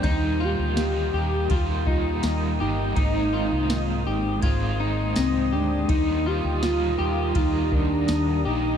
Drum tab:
RD |x-x-x-x-|x-x-x-x-|x-x-x-x-|
TB |--x---x-|--x---x-|--x---x-|
SD |--o---o-|--o---o-|--o---o-|
BD |o---oo--|o---o---|o---oo--|